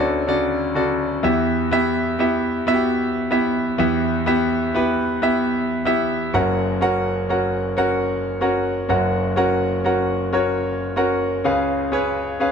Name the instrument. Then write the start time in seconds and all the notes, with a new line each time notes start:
grand piano
Already playing: D2 D3 C#4 F#4 A4 D5 D#5 A5
0.27 C#3 F#4 A4 D5
0.75 C#3 F#4 A4 D5
1.23 E2 E3 B3 E4 G4 E5
1.71 B3 E4 G4 E5
2.19 B3 E4 G4 E5
2.67 B3 E4 F#4 E5
2.74 G4
3.31 B3 E4 G4 E5
3.78 E2 E3 B3 E4 G4 E5
4.26 B3 E4 G4 E5
4.74 B3 E4 G4 B4
5.22 B3 E4 G4 E5
5.85 B3 E4 G4 E5
6.33 F#1 F#2 C#4 F#4 A#4 F#5
6.81 C#4 F#4 A#4 F#5
7.29 C#4 F#4 A#4 F#5
7.77 C#4 F#4 A#4 F#5
8.41 C#4 F#4 A#4 F#5
8.89 F#1 F#2 C#4 F#4 A#4 F#5
9.36 C#4 F#4 A#4 F#5
9.84 C#4 F#4 A#4 F#5
10.33 C#4 F#4 A#4 C#5
10.96 C#4 F#4 A#4 F#5
11.44 C#2 C#3 C#4 G#4 B4 F5
11.92 C#4 G#4 B4 C#5
12.40 C#4 G#4 B4 F5